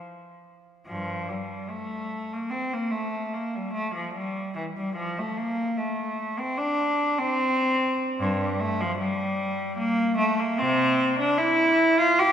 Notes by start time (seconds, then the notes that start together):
0.87 G2 F3
1.29 G3
1.70 A3
2.33 A#3
2.50 C4
2.73 A#3
2.91 A3
3.34 A#3
3.55 G3
3.74 A3
3.95 F3
4.14 G3
4.56 E3
4.77 G3
4.96 F3
5.19 A3
5.37 A#3
5.78 A3
6.39 C4
6.58 D4
7.18 C4
8.20 G2
8.41 G3
8.60 A3
8.81 F3
8.99 G3
9.78 A#3
10.18 A3
10.40 A#3
10.58 C3 C4
11.20 D4
11.38 E4
11.99 F4
12.20 G4